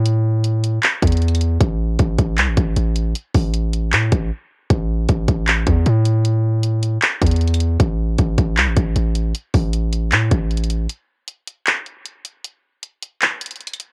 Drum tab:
HH |x-----------------------x-----------x-----------x-----------x--x--x--x--x---x---x---x-----------|x-----------------------x-----------x-----------x-----------x-----------x-----------x-----------|x-----------o-----------x-----------x-----------x-----------x-----------------------------------|x-----------------------x-----------x-----------x-----------x-----------x-----------x-----------|
CP |------------------------------------------------x-----------------------------------------------|------------------------------------------------x-----------------------------------------------|------------------------------------------------x-----------------------------------------------|------------------------------------------------x-----------------------------------------------|
BD |------------------------------------------------------------o-----------------------------------|o-----------------------o-----------o-----------------------o-----------------------------------|------------o-----------------------------------------------o-----------------------------------|o-----------------------o-----------o-----------------------o-----------------------------------|

HH |x-----------------------x-----------x-----------x-----------x--x--x--x--x---x---x---x-----------|x-----------------------x-----------x-----------x-----------x-----------x-----------x-----------|x-----------o-----------x-----------x-----------x-----------x-----------x---x---x---x-----------|x-----------------------x-----------x-----------x-----------x-----------x-----------x-----------|
CP |------------------------------------------------x-----------------------------------------------|------------------------------------------------x-----------------------------------------------|------------------------------------------------x-----------------------------------------------|------------------------------------------------x-----------------------------------------------|
BD |------------------------------------------------------------o-----------------------------------|o-----------------------o-----------o-----------------------o-----------------------------------|------------o-----------------------------------------------o-----------------------------------|------------------------------------------------------------------------------------------------|

HH |x-----------------------x-----------x-----------x-----------x--x--x--x--x---x---x---x-----------|
CP |------------------------------------------------x-----------------------------------------------|
BD |------------------------------------------------------------------------------------------------|